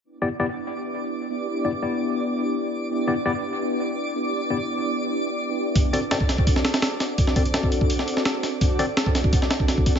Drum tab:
HH |----------------|----------------|----------------|----------------|
SD |----------------|----------------|----------------|----------------|
BD |----------------|----------------|----------------|----------------|

HH |o-o-o-o-o-ooo-o-|o-oxo-o-o-o-o-o-|o-o-o-o-o-o-o-o-|
SD |----o-o--oooo-o-|-o--o----o-oo-o-|----o-o--oo-o--o|
BD |o----o-oo-------|o-o--o-o--------|o----o-oo--o-oo-|